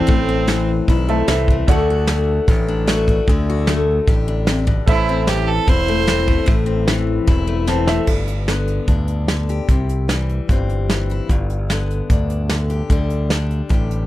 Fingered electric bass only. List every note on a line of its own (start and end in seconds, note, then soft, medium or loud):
0.09 0.79 A1 loud
0.88 1.23 B1 medium
1.28 1.62 C2 medium
1.68 2.39 D2 loud
2.48 3.19 A1 medium
3.28 3.99 D2 loud
4.08 4.78 A1 medium
4.87 5.58 A1 loud
5.68 6.38 E1 medium
6.48 7.18 A1 medium
7.28 7.98 E1 medium
8.08 8.78 G1 medium
8.88 9.59 D2 medium
9.68 10.39 C2 medium
10.49 11.20 G1 medium
11.30 12.00 G1 medium
12.10 12.81 D2 medium
12.90 13.61 D2 medium
13.71 14.07 A1 medium